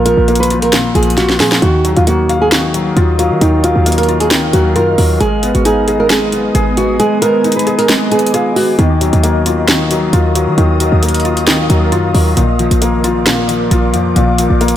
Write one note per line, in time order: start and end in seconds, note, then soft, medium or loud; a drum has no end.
0.00 0.16 A#1 loud
0.00 0.73 A#2 loud
0.00 0.06 F3 medium
0.00 0.28 A#3 medium
0.00 0.51 F4 loud
0.06 0.94 F3 medium
0.06 0.38 A#4 medium
0.06 closed hi-hat medium
0.17 0.92 A#1 loud
0.28 1.40 A#3 medium
0.28 closed hi-hat medium
0.35 closed hi-hat medium
0.40 0.59 B4 medium
0.40 closed hi-hat medium
0.50 1.16 F4 medium
0.50 closed hi-hat medium
0.62 0.71 A#4 medium
0.62 closed hi-hat medium
0.73 1.62 A#2 medium
0.73 snare loud
0.73 closed hi-hat medium
0.95 1.41 A#1 loud
0.95 1.38 F3 medium
0.95 1.14 G#4 medium
0.95 closed hi-hat medium
1.03 closed hi-hat medium
1.10 closed hi-hat medium
1.17 1.62 F4 medium
1.17 1.36 F#4 medium
1.17 snare medium
1.17 closed hi-hat medium
1.29 snare medium
1.40 1.61 A#2 loud
1.40 1.62 F3 medium
1.40 1.59 G#4 medium
1.40 snare medium
1.40 open hi-hat medium
1.52 snare loud
1.62 1.95 D#2 loud
1.62 2.50 D#3 medium
1.62 1.94 F#4 medium
1.62 5.17 A#4 medium
1.62 12.33 D#5 medium
1.62 5.17 F5 medium
1.62 3.40 D#6 medium
1.62 closed hi-hat medium
1.85 2.73 F#3 medium
1.85 closed hi-hat medium
1.96 2.93 D#2 loud
1.96 2.05 F4 medium
1.96 closed hi-hat medium
2.07 3.19 A#3 medium
2.07 2.39 F#4 medium
2.07 closed hi-hat medium
2.29 3.41 F5 medium
2.29 closed hi-hat medium
2.42 2.50 G#4 medium
2.52 3.40 D#3 medium
2.52 3.15 F#4 medium
2.52 snare loud
2.52 closed hi-hat medium
2.74 3.17 F#3 medium
2.74 closed hi-hat medium
2.97 3.32 D#2 loud
2.97 4.07 F4 loud
2.97 closed hi-hat medium
3.19 3.62 F#3 medium
3.19 3.38 F4 medium
3.19 closed hi-hat medium
3.31 3.41 D#3 medium
3.41 3.74 D#2 loud
3.41 4.29 D#3 medium
3.41 3.60 D#4 medium
3.41 5.19 F6 medium
3.41 closed hi-hat medium
3.64 4.52 F#3 medium
3.64 3.96 F4 medium
3.64 closed hi-hat medium
3.76 4.32 D#2 loud
3.86 4.98 A#3 medium
3.86 closed hi-hat medium
3.92 closed hi-hat medium
3.98 4.17 A#4 medium
3.98 closed hi-hat medium
4.03 closed hi-hat soft
4.08 4.74 F4 medium
4.08 closed hi-hat soft
4.20 4.29 G#4 medium
4.20 closed hi-hat medium
4.31 4.44 D2 loud
4.31 5.21 D#3 medium
4.31 snare loud
4.31 closed hi-hat medium
4.43 4.53 D#2 medium
4.53 4.77 D#2 loud
4.53 4.97 F#3 medium
4.53 4.72 F#4 medium
4.53 closed hi-hat medium
4.76 4.97 F#2 loud
4.76 5.20 F4 medium
4.76 5.18 A#4 medium
4.76 closed hi-hat medium
4.98 5.20 D#2 loud
4.98 5.21 F#3 medium
4.98 open hi-hat medium
5.20 5.53 G#1 loud
5.20 6.08 G#3 medium
5.20 8.75 B3 medium
5.20 5.53 G#4 loud
5.20 8.75 G#5 medium
5.20 6.98 D#6 medium
5.20 closed hi-hat medium
5.43 6.31 B3 medium
5.43 closed hi-hat medium
5.55 6.51 G#1 loud
5.55 5.64 F#4 medium
5.55 closed hi-hat medium
5.65 6.77 D#4 medium
5.65 5.98 G#4 medium
5.65 closed hi-hat medium
5.88 6.53 G#4 medium
5.88 closed hi-hat medium
6.00 6.09 A#4 medium
6.10 6.98 G#3 medium
6.10 6.73 G#4 medium
6.10 snare loud
6.10 closed hi-hat medium
6.32 6.76 B3 medium
6.32 closed hi-hat medium
6.55 7.00 G#1 loud
6.55 7.65 G#4 loud
6.55 closed hi-hat medium
6.77 7.20 B3 medium
6.77 6.96 F#4 medium
6.77 closed hi-hat medium
7.00 7.88 G#3 medium
7.00 7.19 G#4 medium
7.00 8.77 D6 medium
7.00 closed hi-hat medium
7.22 8.10 B3 medium
7.22 7.54 A#4 loud
7.22 closed hi-hat medium
7.44 8.56 D#4 medium
7.44 closed hi-hat medium
7.52 closed hi-hat medium
7.56 7.75 B4 medium
7.56 closed hi-hat medium
7.67 8.32 G#4 medium
7.67 closed hi-hat medium
7.79 7.87 A#4 medium
7.79 closed hi-hat medium
7.89 8.79 G#3 medium
7.89 snare loud
7.89 closed hi-hat medium
8.12 8.55 B3 medium
8.12 8.31 G#4 medium
8.12 closed hi-hat medium
8.19 closed hi-hat medium
8.27 closed hi-hat medium
8.34 8.53 F4 medium
8.34 8.79 G#4 loud
8.34 closed hi-hat medium
8.56 8.79 B3 medium
8.56 8.75 F#4 loud
8.56 open hi-hat medium
8.79 9.12 D#2 loud
8.79 9.67 D#3 medium
8.79 14.77 A#4 medium
8.79 14.77 F5 medium
8.79 12.33 D#6 medium
8.79 closed hi-hat medium
9.01 9.89 F#3 medium
9.01 closed hi-hat medium
9.13 10.09 D#2 loud
9.13 closed hi-hat medium
9.23 10.35 A#3 medium
9.23 closed hi-hat medium
9.46 10.12 F4 medium
9.46 closed hi-hat medium
9.68 10.56 D#3 medium
9.68 snare loud
9.68 closed hi-hat medium
9.91 10.34 F#3 medium
9.91 closed hi-hat medium
10.13 10.49 D#2 loud
10.13 11.23 F4 medium
10.13 closed hi-hat medium
10.35 10.79 F#3 medium
10.35 closed hi-hat medium
10.47 10.57 D#3 loud
10.58 10.91 D#2 loud
10.58 11.46 D#3 medium
10.58 closed hi-hat medium
10.80 11.68 F#3 medium
10.80 closed hi-hat medium
10.92 11.49 D#2 loud
11.03 12.14 A#3 medium
11.03 closed hi-hat medium
11.09 closed hi-hat medium
11.14 closed hi-hat medium
11.20 closed hi-hat soft
11.25 11.91 F4 medium
11.25 closed hi-hat soft
11.37 closed hi-hat medium
11.47 11.61 D2 loud
11.47 12.37 D#3 medium
11.47 snare loud
11.47 closed hi-hat medium
11.59 11.69 D#2 loud
11.70 11.94 D#2 loud
11.70 12.13 F#3 medium
11.70 closed hi-hat medium
11.92 12.13 F#2 loud
11.92 12.37 F4 loud
11.92 closed hi-hat medium
12.14 12.36 D#2 loud
12.14 12.37 F#3 medium
12.14 open hi-hat medium
12.37 12.70 A#1 loud
12.37 13.25 A#2 medium
12.37 14.77 D5 medium
12.37 14.77 D6 medium
12.37 closed hi-hat medium
12.59 13.47 F3 medium
12.59 closed hi-hat medium
12.71 13.67 A#1 loud
12.71 closed hi-hat medium
12.82 13.94 A#3 medium
12.82 closed hi-hat medium
13.04 13.70 F4 medium
13.04 closed hi-hat medium
13.26 14.14 A#2 medium
13.26 snare loud
13.26 closed hi-hat medium
13.49 13.92 F3 medium
13.49 closed hi-hat medium
13.71 13.95 A#1 loud
13.71 14.77 F4 loud
13.71 closed hi-hat medium
13.94 14.15 F2 loud
13.94 14.37 F3 medium
13.94 closed hi-hat medium
14.16 14.49 A#1 loud
14.16 14.77 A#2 loud
14.16 closed hi-hat medium
14.38 14.77 F3 medium
14.38 closed hi-hat medium
14.50 14.77 A#1 loud
14.61 14.77 A#3 medium
14.61 closed hi-hat medium
14.68 closed hi-hat medium